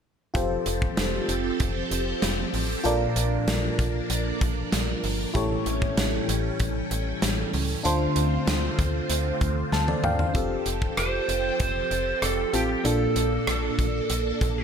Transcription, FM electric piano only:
0.34 2.80 F4 medium
0.34 2.81 G4 medium
0.34 2.81 A4 medium
0.34 2.82 C5 medium
2.84 3.75 A#2 medium
2.84 5.30 F4 medium
2.84 5.31 A4 medium
2.84 5.31 A#4 medium
2.84 5.31 D5 medium
5.34 6.25 A2 medium
5.34 7.80 E4 medium
5.34 7.81 G4 medium
5.34 7.81 A4 medium
5.34 7.82 C#5 medium
7.83 8.75 D3 medium
7.83 9.68 D4 medium
7.83 9.68 F4 medium
7.83 9.38 A4 medium
7.83 9.39 C5 medium
9.73 10.02 A5 medium
9.88 10.03 A4 soft
9.88 10.03 D5 medium
10.04 10.19 D5 medium
10.04 10.18 F5 medium
10.04 10.19 G5 medium
10.19 10.49 C5 soft
10.19 10.49 F5 medium
10.34 12.49 C4 medium
10.34 12.49 F4 medium
10.34 12.50 G4 medium
10.34 12.50 A4 medium
12.53 12.85 C4 soft
12.53 12.84 F4 soft
12.53 12.85 G4 soft
12.53 12.85 A4 medium
12.84 13.75 A#2 medium
12.84 14.64 A#3 medium
12.84 14.64 D4 medium
12.84 14.64 F4 medium
12.84 14.64 A4 medium

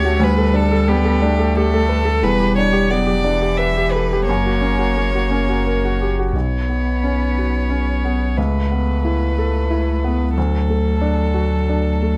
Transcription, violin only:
0.00 0.25 C#5 medium
0.24 0.57 B4 medium
0.55 0.89 A4 medium
0.88 1.57 G4 medium
1.56 2.25 A4 medium
2.23 2.56 B4 medium
2.56 2.92 C#5 medium
2.90 3.58 D5 medium
3.57 3.92 E5 medium
3.91 4.26 B4 medium
4.27 6.10 C#5 medium
6.34 8.38 C#5 soft
8.37 10.36 B4 soft
10.36 12.17 A4 soft

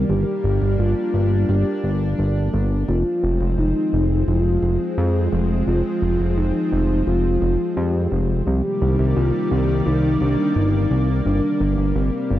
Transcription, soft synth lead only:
0.10 0.81 G4 loud
0.79 1.51 F4 medium
1.49 2.19 G4 loud
2.89 3.54 F4 loud
3.59 4.24 D#4 loud
4.28 4.99 F4 loud
4.97 5.50 G#4 loud
5.67 6.38 F4 loud
6.37 7.06 D#4 loud
7.06 7.78 F4 loud
7.76 8.29 G4 loud
8.46 9.17 G4 loud
9.16 9.52 F4 loud
9.51 9.87 G4 loud
9.86 10.22 D#4 loud
10.21 10.57 D4 loud
10.55 11.08 D#4 loud
11.25 11.97 D4 loud
11.95 12.39 C4 medium

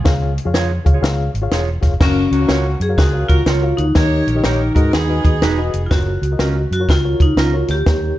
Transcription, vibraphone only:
2.03 2.47 C#4 loud
2.82 2.99 G#4 medium
2.98 3.30 F#4 loud
3.29 3.74 F4 medium
3.77 5.20 D#4 medium
5.87 5.91 F4 medium
5.91 6.72 F#4 medium
6.73 6.90 F#4 medium
6.90 7.22 F4 loud
7.22 7.39 D#4 medium
7.39 7.68 F4 loud
7.71 8.19 G4 medium

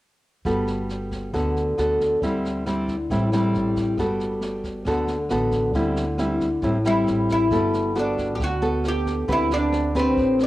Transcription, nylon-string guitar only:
0.45 1.31 G3 soft
0.45 1.30 B3 soft
0.45 1.30 F#4 soft
0.45 1.31 A4 soft
1.33 2.20 D3 soft
1.33 1.74 B3 soft
1.33 1.74 F#4 soft
1.33 1.74 A4 soft
1.78 2.20 B3 soft
1.78 2.20 F#4 soft
1.78 2.21 A4 medium
2.23 3.08 D3 soft
2.23 2.63 G3 soft
2.23 2.63 C4 soft
2.23 2.63 E4 soft
2.67 2.95 G3 medium
2.67 2.95 C4 soft
2.67 2.95 E4 soft
3.11 3.97 A2 soft
3.11 3.29 G3 soft
3.11 3.29 C4 soft
3.11 3.29 E4 medium
3.33 3.95 G3 medium
3.33 3.96 C4 soft
3.33 3.96 E4 medium
3.99 4.85 G3 soft
3.99 4.83 B3 soft
3.99 4.84 F#4 soft
3.99 4.84 A4 soft
4.87 5.73 D3 soft
4.87 5.15 B3 soft
4.87 5.15 F#4 soft
4.87 5.16 A4 medium
5.31 5.73 B3 soft
5.31 5.73 F#4 soft
5.31 5.74 A4 soft
5.75 6.61 D3 soft
5.75 6.04 G3 soft
5.75 6.04 C4 soft
5.75 6.04 E4 soft
6.19 6.47 G3 soft
6.19 6.48 C4 medium
6.19 6.48 E4 soft
6.63 7.50 A2 soft
6.63 6.76 G3 soft
6.63 6.76 C4 soft
6.63 6.77 E4 soft
6.85 7.48 G3 medium
6.85 7.48 C4 soft
6.85 7.49 E4 medium
7.51 8.38 G3 soft
7.51 7.92 B3 soft
7.51 7.93 F#4 soft
7.51 7.93 A4 soft
7.95 8.40 B3 soft
7.95 8.40 F#4 medium
7.95 8.40 A4 soft
8.40 9.26 D3 soft
8.62 9.25 B3 medium
8.62 9.25 A4 medium
9.28 10.14 D3 soft
9.28 9.91 C4 soft
9.28 9.91 G4 soft
9.28 9.91 B4 soft
9.95 10.47 C4 medium
9.95 10.47 G4 medium
9.95 10.47 B4 medium
10.18 10.47 A2 soft

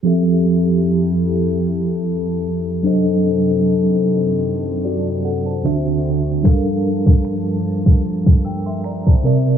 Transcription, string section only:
0.05 2.82 F2 medium
0.05 2.82 E4 medium
0.05 2.82 G4 medium
0.05 5.61 A4 medium
2.85 5.62 F#2 medium
2.85 5.62 C3 medium
2.85 5.62 D#3 medium
5.64 6.44 D2 medium
5.64 6.44 D3 medium
5.64 6.44 C4 medium
5.64 6.44 F#4 medium
6.44 9.22 G2 medium
6.44 9.22 F3 medium
6.44 9.58 A#3 medium
6.44 9.22 A5 medium
9.25 9.58 C3 medium
9.25 9.58 G3 medium
9.25 9.58 E4 medium

